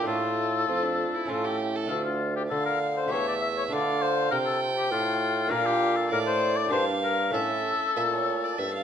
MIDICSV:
0, 0, Header, 1, 5, 480
1, 0, Start_track
1, 0, Key_signature, -1, "minor"
1, 0, Tempo, 610998
1, 50, Time_signature, 3, 2, 24, 8
1, 2450, Tempo, 600601
1, 5330, Tempo, 621118
1, 6962, End_track
2, 0, Start_track
2, 0, Title_t, "Violin"
2, 0, Program_c, 0, 40
2, 48, Note_on_c, 0, 65, 47
2, 472, Note_off_c, 0, 65, 0
2, 524, Note_on_c, 0, 65, 53
2, 648, Note_on_c, 0, 62, 47
2, 660, Note_off_c, 0, 65, 0
2, 902, Note_on_c, 0, 64, 51
2, 914, Note_off_c, 0, 62, 0
2, 1014, Note_on_c, 0, 65, 55
2, 1026, Note_off_c, 0, 64, 0
2, 1135, Note_on_c, 0, 67, 52
2, 1147, Note_off_c, 0, 65, 0
2, 1381, Note_on_c, 0, 69, 54
2, 1392, Note_off_c, 0, 67, 0
2, 1496, Note_off_c, 0, 69, 0
2, 1972, Note_on_c, 0, 77, 44
2, 2418, Note_off_c, 0, 77, 0
2, 2455, Note_on_c, 0, 76, 53
2, 2935, Note_on_c, 0, 77, 54
2, 2947, Note_off_c, 0, 76, 0
2, 3409, Note_on_c, 0, 79, 58
2, 3421, Note_off_c, 0, 77, 0
2, 4366, Note_off_c, 0, 79, 0
2, 4371, Note_on_c, 0, 77, 60
2, 4838, Note_off_c, 0, 77, 0
2, 4845, Note_on_c, 0, 74, 54
2, 5319, Note_off_c, 0, 74, 0
2, 5327, Note_on_c, 0, 77, 59
2, 5810, Note_on_c, 0, 76, 48
2, 5821, Note_off_c, 0, 77, 0
2, 6242, Note_off_c, 0, 76, 0
2, 6289, Note_on_c, 0, 76, 50
2, 6337, Note_off_c, 0, 76, 0
2, 6407, Note_on_c, 0, 73, 41
2, 6657, Note_on_c, 0, 74, 46
2, 6669, Note_off_c, 0, 73, 0
2, 6766, Note_on_c, 0, 76, 53
2, 6777, Note_off_c, 0, 74, 0
2, 6885, Note_off_c, 0, 76, 0
2, 6889, Note_on_c, 0, 77, 57
2, 6962, Note_off_c, 0, 77, 0
2, 6962, End_track
3, 0, Start_track
3, 0, Title_t, "Oboe"
3, 0, Program_c, 1, 68
3, 59, Note_on_c, 1, 69, 72
3, 1232, Note_off_c, 1, 69, 0
3, 1496, Note_on_c, 1, 69, 71
3, 1606, Note_off_c, 1, 69, 0
3, 1609, Note_on_c, 1, 65, 52
3, 1846, Note_off_c, 1, 65, 0
3, 1856, Note_on_c, 1, 67, 50
3, 1909, Note_off_c, 1, 67, 0
3, 1967, Note_on_c, 1, 69, 67
3, 2082, Note_off_c, 1, 69, 0
3, 2086, Note_on_c, 1, 70, 62
3, 2195, Note_off_c, 1, 70, 0
3, 2331, Note_on_c, 1, 72, 65
3, 2448, Note_on_c, 1, 73, 80
3, 2460, Note_off_c, 1, 72, 0
3, 2569, Note_off_c, 1, 73, 0
3, 2577, Note_on_c, 1, 74, 57
3, 2630, Note_off_c, 1, 74, 0
3, 2686, Note_on_c, 1, 76, 65
3, 2741, Note_off_c, 1, 76, 0
3, 2814, Note_on_c, 1, 73, 66
3, 2867, Note_off_c, 1, 73, 0
3, 2933, Note_on_c, 1, 74, 66
3, 3173, Note_on_c, 1, 72, 72
3, 3185, Note_off_c, 1, 74, 0
3, 3400, Note_off_c, 1, 72, 0
3, 3405, Note_on_c, 1, 70, 68
3, 3460, Note_off_c, 1, 70, 0
3, 3523, Note_on_c, 1, 69, 62
3, 3632, Note_off_c, 1, 69, 0
3, 3773, Note_on_c, 1, 67, 60
3, 3884, Note_off_c, 1, 67, 0
3, 3889, Note_on_c, 1, 65, 74
3, 4361, Note_on_c, 1, 70, 76
3, 4373, Note_off_c, 1, 65, 0
3, 4485, Note_on_c, 1, 67, 68
3, 4497, Note_off_c, 1, 70, 0
3, 4726, Note_on_c, 1, 69, 57
3, 4738, Note_off_c, 1, 67, 0
3, 4846, Note_off_c, 1, 69, 0
3, 4852, Note_on_c, 1, 70, 79
3, 4904, Note_off_c, 1, 70, 0
3, 4968, Note_on_c, 1, 72, 82
3, 5209, Note_on_c, 1, 74, 72
3, 5221, Note_off_c, 1, 72, 0
3, 5324, Note_off_c, 1, 74, 0
3, 5329, Note_on_c, 1, 72, 75
3, 5436, Note_off_c, 1, 72, 0
3, 5571, Note_on_c, 1, 70, 68
3, 5798, Note_off_c, 1, 70, 0
3, 5803, Note_on_c, 1, 69, 74
3, 6962, Note_off_c, 1, 69, 0
3, 6962, End_track
4, 0, Start_track
4, 0, Title_t, "Lute"
4, 0, Program_c, 2, 24
4, 16, Note_on_c, 2, 57, 36
4, 31, Note_on_c, 2, 62, 32
4, 43, Note_on_c, 2, 65, 34
4, 51, Note_on_c, 2, 45, 39
4, 499, Note_off_c, 2, 45, 0
4, 539, Note_on_c, 2, 41, 38
4, 816, Note_off_c, 2, 41, 0
4, 965, Note_off_c, 2, 57, 0
4, 972, Note_off_c, 2, 62, 0
4, 979, Note_off_c, 2, 65, 0
4, 984, Note_on_c, 2, 57, 35
4, 994, Note_on_c, 2, 61, 35
4, 1007, Note_on_c, 2, 64, 37
4, 1018, Note_on_c, 2, 45, 40
4, 1451, Note_off_c, 2, 57, 0
4, 1460, Note_on_c, 2, 57, 35
4, 1464, Note_off_c, 2, 45, 0
4, 1467, Note_off_c, 2, 61, 0
4, 1470, Note_on_c, 2, 62, 35
4, 1476, Note_off_c, 2, 64, 0
4, 1483, Note_on_c, 2, 65, 34
4, 1493, Note_on_c, 2, 38, 43
4, 1941, Note_off_c, 2, 38, 0
4, 1973, Note_on_c, 2, 50, 38
4, 2404, Note_off_c, 2, 57, 0
4, 2409, Note_off_c, 2, 62, 0
4, 2415, Note_on_c, 2, 57, 39
4, 2416, Note_off_c, 2, 65, 0
4, 2418, Note_off_c, 2, 50, 0
4, 2425, Note_on_c, 2, 67, 43
4, 2448, Note_on_c, 2, 40, 39
4, 2890, Note_off_c, 2, 57, 0
4, 2897, Note_off_c, 2, 40, 0
4, 2899, Note_on_c, 2, 57, 37
4, 2902, Note_off_c, 2, 67, 0
4, 2912, Note_on_c, 2, 62, 36
4, 2922, Note_on_c, 2, 65, 35
4, 2934, Note_on_c, 2, 50, 40
4, 3379, Note_off_c, 2, 57, 0
4, 3380, Note_off_c, 2, 50, 0
4, 3409, Note_on_c, 2, 48, 40
4, 3857, Note_off_c, 2, 48, 0
4, 3887, Note_on_c, 2, 45, 45
4, 4325, Note_off_c, 2, 62, 0
4, 4330, Note_off_c, 2, 65, 0
4, 4330, Note_on_c, 2, 58, 41
4, 4333, Note_off_c, 2, 45, 0
4, 4340, Note_on_c, 2, 62, 44
4, 4356, Note_on_c, 2, 65, 44
4, 4366, Note_on_c, 2, 46, 46
4, 4813, Note_off_c, 2, 46, 0
4, 4845, Note_on_c, 2, 45, 41
4, 5282, Note_off_c, 2, 58, 0
4, 5287, Note_off_c, 2, 62, 0
4, 5294, Note_on_c, 2, 58, 42
4, 5295, Note_off_c, 2, 65, 0
4, 5297, Note_off_c, 2, 45, 0
4, 5310, Note_on_c, 2, 62, 43
4, 5320, Note_on_c, 2, 67, 45
4, 5331, Note_on_c, 2, 43, 47
4, 5775, Note_off_c, 2, 58, 0
4, 5776, Note_off_c, 2, 43, 0
4, 5778, Note_on_c, 2, 57, 39
4, 5783, Note_off_c, 2, 62, 0
4, 5788, Note_off_c, 2, 67, 0
4, 5789, Note_on_c, 2, 61, 36
4, 5801, Note_on_c, 2, 64, 37
4, 5813, Note_on_c, 2, 45, 43
4, 6092, Note_off_c, 2, 45, 0
4, 6289, Note_on_c, 2, 46, 35
4, 6738, Note_off_c, 2, 46, 0
4, 6771, Note_on_c, 2, 43, 40
4, 6962, Note_off_c, 2, 43, 0
4, 6962, Note_off_c, 2, 57, 0
4, 6962, Note_off_c, 2, 61, 0
4, 6962, Note_off_c, 2, 64, 0
4, 6962, End_track
5, 0, Start_track
5, 0, Title_t, "Bassoon"
5, 0, Program_c, 3, 70
5, 53, Note_on_c, 3, 45, 50
5, 522, Note_off_c, 3, 45, 0
5, 536, Note_on_c, 3, 41, 46
5, 839, Note_off_c, 3, 41, 0
5, 1017, Note_on_c, 3, 45, 47
5, 1463, Note_off_c, 3, 45, 0
5, 1497, Note_on_c, 3, 38, 50
5, 1965, Note_off_c, 3, 38, 0
5, 1977, Note_on_c, 3, 50, 48
5, 2442, Note_off_c, 3, 50, 0
5, 2458, Note_on_c, 3, 40, 49
5, 2924, Note_off_c, 3, 40, 0
5, 2934, Note_on_c, 3, 50, 52
5, 3402, Note_off_c, 3, 50, 0
5, 3411, Note_on_c, 3, 48, 55
5, 3889, Note_on_c, 3, 45, 53
5, 3901, Note_off_c, 3, 48, 0
5, 4362, Note_off_c, 3, 45, 0
5, 4367, Note_on_c, 3, 46, 61
5, 4836, Note_off_c, 3, 46, 0
5, 4846, Note_on_c, 3, 45, 52
5, 5320, Note_off_c, 3, 45, 0
5, 5328, Note_on_c, 3, 43, 53
5, 5796, Note_off_c, 3, 43, 0
5, 5804, Note_on_c, 3, 45, 53
5, 6112, Note_off_c, 3, 45, 0
5, 6289, Note_on_c, 3, 46, 49
5, 6738, Note_off_c, 3, 46, 0
5, 6770, Note_on_c, 3, 43, 43
5, 6962, Note_off_c, 3, 43, 0
5, 6962, End_track
0, 0, End_of_file